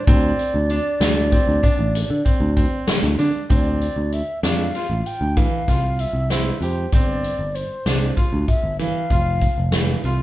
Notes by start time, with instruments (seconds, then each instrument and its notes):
0.05 picked electric bass D2, grand piano C4, flute D5, kick, closed hi-hat
0.39 closed hi-hat
0.54 picked electric bass D2
0.70 grand piano D4, closed hi-hat
1.01 picked electric bass D2, snare, closed hi-hat
1.32 grand piano C4, kick, closed hi-hat
1.47 picked electric bass D2
1.63 grand piano D4, kick, closed hi-hat
1.79 picked electric bass A1
1.95 closed hi-hat
2.10 picked electric bass D3
2.25 grand piano C4, kick, closed hi-hat
2.40 picked electric bass D2
2.56 grand piano C4, kick, closed hi-hat
2.88 snare, closed hi-hat
3.03 picked electric bass D2
3.19 picked electric bass D3, grand piano D4, closed hi-hat
3.50 picked electric bass D2, grand piano C4, flute D5, kick, closed hi-hat
3.82 closed hi-hat
3.96 picked electric bass D2
4.12 flute E5, closed hi-hat
4.43 picked electric bass F2, grand piano D4, flute F5, snare, closed hi-hat
4.75 grand piano F4, snare, closed hi-hat
4.90 picked electric bass A1
5.06 flute G5, closed hi-hat
5.21 picked electric bass D2
5.37 grand piano E3, flute F5, kick, closed hi-hat
5.68 picked electric bass C2, grand piano F4, kick, snare, closed hi-hat
5.99 flute E5, closed hi-hat
6.13 picked electric bass C2
6.30 grand piano E4, flute C5, snare, closed hi-hat
6.61 picked electric bass F2, grand piano G4, flute C5, closed hi-hat
6.92 picked electric bass G1, grand piano C4, flute D5, kick, closed hi-hat
7.24 closed hi-hat
7.39 picked electric bass G1
7.55 flute C5, closed hi-hat
7.86 picked electric bass C2, grand piano D4, snare, closed hi-hat
8.17 grand piano F4, kick, closed hi-hat
8.33 picked electric bass D2
8.48 flute E5, kick, closed hi-hat
8.63 picked electric bass G1
8.79 grand piano E3, flute F5, closed hi-hat
9.10 picked electric bass F1, grand piano F4, kick, closed hi-hat
9.41 kick, closed hi-hat
9.58 picked electric bass F1
9.72 grand piano E3, snare, closed hi-hat
10.04 picked electric bass C2, grand piano F4, closed hi-hat